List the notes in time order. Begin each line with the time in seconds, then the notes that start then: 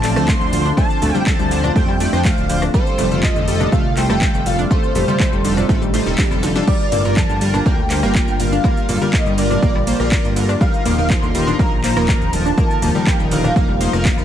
Already playing: A1 D3 A3 C4 F4 A5
0.04 F3 A3 D4 D5, clap, open hi-hat, shaker
0.16 D2 F3 A3 D4 C5, cross-stick, shaker
0.28 F3 A3 D4 C5 C6, kick, clap, high woodblock, shaker
0.41 D2, shaker
0.52 F3 D4 C5, open hi-hat, low conga, shaker
0.65 D4, shaker
0.77 F3 A3 D4 C5 A5, kick, high woodblock, shaker
0.90 shaker
1.02 D2 F3 A3 D4 A4, open hi-hat, low conga, shaker
1.15 F3 G3 D4 C5, high conga, shaker
1.26 F3 A3 D4 C5 A5, kick, clap, shaker
1.39 D2 G3, high woodblock, shaker
1.51 D3 F3 D4 C5, open hi-hat, shaker
1.63 D4, cross-stick, high conga, low conga, shaker
1.76 F2 F3 A3 D4 C5 G5, kick, shaker
1.88 G3, high woodblock
2.00 F3 A3 D4 D5, open hi-hat, shaker
2.13 F2 F3 D4 C5, cross-stick, shaker
2.25 F3 A3 D4 C5 F5, kick, clap, open hi-hat, shaker
2.37 D1, shaker
2.49 D3 F3 D4 C5, open hi-hat, high woodblock, shaker
2.62 D4, cross-stick, shaker
2.74 C3 G3 F4 A4 C5, kick, shaker
2.87 shaker
2.98 F1 G3 A3 F4 G4, open hi-hat, low conga, high woodblock, shaker
3.11 G3 F4 A4, high conga, shaker
3.23 F3 G3 F4 A4 D#5, kick, clap, shaker
3.36 F1 D3, shaker
3.48 G3 F4 A4, open hi-hat, shaker
3.60 D4, cross-stick, high conga, low conga, high woodblock, shaker
3.72 C2 G3 A3 F4 A4 F5, kick, shaker
3.97 G3 A3 F4 C5 G5, clap, open hi-hat, shaker
4.10 F1 G3 A3 F4 A4, cross-stick, high woodblock, shaker
4.21 G3 A3 F4 A4, kick, clap, shaker
4.34 F1, shaker
4.46 G3 F4 A4 F5, open hi-hat, low conga, shaker
4.59 D4, shaker
4.71 G3 A3 D#4 F4 A4 C5, kick, high woodblock, shaker
4.83 shaker
4.95 F1 G3 A3 F4 G4, open hi-hat, low conga, shaker
5.08 G3 F4 A4, high conga, shaker
5.20 G3 A3 F4 A4, kick, clap, high woodblock, shaker
5.33 F1 G3, shaker
5.44 D3 G3 F4 A4, open hi-hat, shaker
5.57 D4, cross-stick, high conga, low conga, shaker
5.69 A1 G3 A3 F4 A4, kick, snare, swell, shaker
5.82 G3, high woodblock, shaker
5.94 G3 A3 F4 C5, snare, open hi-hat, shaker
6.06 D#1 G3 F4 A4, snare, shaker
6.18 A3, kick, snare, clap, open hi-hat, shaker
6.31 F1 G3 F4 A4, high woodblock, shaker
6.43 D3, snare, open hi-hat, shaker
6.55 G3 D4 F4 A4, snare, shaker
6.67 D3 G3 A#3 F4 A#4 D5, kick, crash, shaker
6.80 shaker
6.92 G1 G3 A#3 F4 A4, open hi-hat, ride, low conga, shaker
7.05 G3 F4 A#4, high conga, high woodblock, shaker
7.17 F3 G3 F4 A#4 A5, kick, clap, shaker
7.29 G1 D3, shaker
7.41 G3 F4 A#4, open hi-hat, ride, shaker
7.54 D4, cross-stick, high conga, low conga, high woodblock, shaker
7.66 D2 G3 A#3 F4 A#4 G5, kick, shaker
7.90 G3 A#3 F4 C5, clap, open hi-hat, ride, shaker
8.03 G1 G3 A#3 F4 A#4, cross-stick, shaker
8.15 G3 A#3 F4 A#4, kick, clap, high woodblock, shaker
8.28 G1, shaker
8.40 G3 F4 A#4 F5, open hi-hat, ride, low conga, shaker
8.52 D4, shaker
8.64 G3 A#3 F4 A#4, kick, high woodblock, shaker
8.77 shaker
8.89 G1 G3 A#3 F4 A4, open hi-hat, ride, low conga, shaker
9.01 G3 F4 A#4, high conga, shaker
9.13 G3 A#3 F4 A#4 D#5, kick, clap, shaker
9.26 G1 G3, high woodblock, shaker
9.38 D3 G3 F4 A#4 D5, open hi-hat, ride, shaker
9.51 D4, cross-stick, high conga, low conga, shaker
9.62 A#1 G3 A#3 F4 A#4, kick, shaker
9.75 G3, high woodblock
9.87 G3 A#3 F4 C5, open hi-hat, ride, shaker
10.00 A#1 G3 F4 A#4, cross-stick, shaker
10.12 G3 A#3 F4 A#4, kick, clap, open hi-hat, shaker
10.24 G2, shaker
10.36 D3 G3 F4 A#4, open hi-hat, ride, high woodblock, shaker
10.49 D4, cross-stick, shaker
10.61 D#3 F3 G3 D#4 A#4 F5, kick, shaker
10.74 shaker
10.85 D#1 F3 A#3 D#4 G4, open hi-hat, ride, low conga, high woodblock, shaker
10.98 F3 D#4 A#4, high conga, shaker
11.10 F3 D#4 A#4 C6, kick, clap, shaker
11.23 D#1 D3, shaker
11.35 F3 G3 D#4 A#4, open hi-hat, ride, shaker
11.47 D4, cross-stick, high conga, low conga, high woodblock, shaker
11.59 A#1 F3 A#3 D#4 A#4 A#5, kick, shaker
11.84 F3 A#3 D#4 C5, clap, open hi-hat, ride, shaker
11.96 D#1 F3 A#3 D#4 A#4, cross-stick, high woodblock, shaker
12.08 F3 D#4 A#4, kick, clap, shaker
12.21 D#1, shaker
12.33 F3 D#4 A#4 A5, open hi-hat, ride, low conga, shaker
12.46 D4, shaker
12.58 F3 A3 A#3 D#4 A#4, kick, high woodblock, shaker
12.70 shaker
12.82 D#1 F3 A#3 D#4 G4, open hi-hat, ride, low conga, shaker
12.95 F3 G3 D#4 A#4, high conga, shaker
13.06 F3 A#3 D#4 A#4 G5, kick, clap, high woodblock, shaker
13.19 D#1 G3, shaker
13.31 D3 F3 D#4 A#4 F5, open hi-hat, ride, shaker
13.44 D4, cross-stick, high conga, low conga, shaker
13.56 F1 F3 A#3 D#4 A#4, kick, shaker
13.68 G3, high woodblock
13.81 F3 A#3 D#4 C5, open hi-hat, ride, shaker
13.93 F1 F3 D#4 A#4, cross-stick, shaker
14.05 A#3, kick, clap, open hi-hat, shaker
14.17 F1 F3 D#4 A#4, high woodblock, shaker